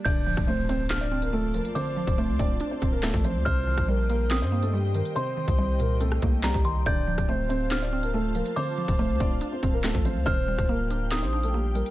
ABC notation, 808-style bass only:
X:1
M:4/4
L:1/16
Q:1/4=141
K:Dphr
V:1 name="808-style bass" clef=bass
D,,,3 D,,,12 z | z3 D,,,2 D,, D,,,2 z2 D,,,3 A,,,2 D,, | C,,3 B,,,6 G,,6 z | z3 C,,6- C,, C,,3 C,,3 |
D,,,3 D,,,12 z | z3 D,,,2 D,, D,,,2 z2 D,,,3 A,,,2 D,, | E,,,3 D,,,6 B,,,6 z |]